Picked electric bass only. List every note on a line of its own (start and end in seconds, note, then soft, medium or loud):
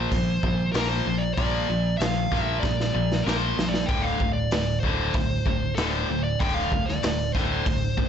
0.12 0.38 A#1 medium
0.43 0.69 A#1 medium
0.74 1.00 A#1 medium
1.06 1.32 A#1 medium
1.38 1.64 A#1 medium
1.69 1.95 A#1 medium
1.99 2.26 A#1 medium
2.32 2.58 A#1 medium
2.63 2.89 A#1 medium
2.95 3.21 A#1 medium
3.26 3.52 A#1 medium
3.58 3.84 A#1 medium
3.89 4.15 D1 medium
4.20 4.47 D1 medium
4.52 4.78 D1 medium
4.84 5.10 D1 medium
5.14 5.41 D1 medium
5.46 5.72 D1 medium
5.77 6.04 D1 medium
6.09 6.35 D1 medium
6.40 6.67 D1 loud
6.72 6.98 D1 medium
7.04 7.30 D1 medium
7.35 7.61 D1 medium
7.66 7.93 D1 medium
7.98 8.09 D1 medium